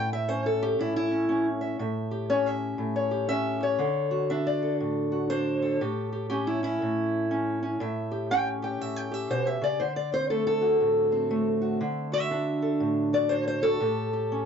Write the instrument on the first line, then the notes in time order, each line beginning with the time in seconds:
steel-string acoustic guitar
Already playing: A2 G5
0.13 E5
0.28 C#4 C5
0.46 A4
0.63 G4
0.79 A2 E4
0.96 E4
1.11 C#4
1.29 C#4
1.61 E5
1.79 A2 E5
2.11 G4
2.30 C#4 C#5
2.46 E5
2.78 A2
2.96 C#5
3.11 G4
3.29 C#4 E5
3.61 G4 C#5
3.79 D3 A4
4.11 F#4
4.30 D4 E5
4.47 D5
4.63 A4
4.80 A2
5.12 F#4
5.30 D4 C5
5.62 A4
5.81 A2 G4
6.12 G4
6.30 C#4 G4
6.47 E4
6.63 C#4 E4
6.82 A2
7.31 C#4
7.63 C#4
7.80 A2 E5
8.12 G4
8.31 C#4 G5
8.62 G4 G5
8.81 A2 E5
8.96 G5
9.12 G4 E5
9.30 B2 C5
9.47 E5
9.61 C#3 D5
9.80 D3 C5
9.96 D5
10.12 C4 C5
10.30 A3 A4
10.47 A4
10.61 F#4
10.81 A2
11.12 C4
11.31 A3
11.62 F#4
11.81 D3
12.12 F#4 E5
12.31 D4
12.62 A4
12.80 A2
13.13 F#4 D5
13.29 D4 C5
13.48 C5
13.63 F#4 A4
13.81 A2 G4
14.13 G4
14.32 C#4